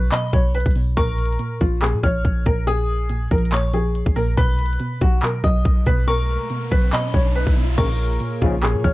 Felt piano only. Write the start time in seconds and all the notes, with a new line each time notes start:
0.12 D#5
0.33 C#5
0.55 B4
0.97 A#4
1.61 F4
1.82 G#4
2.03 C#5
2.46 A#4
2.67 G#4
3.31 A#4
3.52 C#5
3.74 G#4
4.16 A#4
4.37 B4
5.02 F#4
5.23 A#4
5.44 D#5
5.87 B4
6.08 A#4
6.71 B4
6.93 D#5
7.14 C#5
7.35 B4
7.78 A#4
8.42 F4
8.63 G#4
8.84 C#5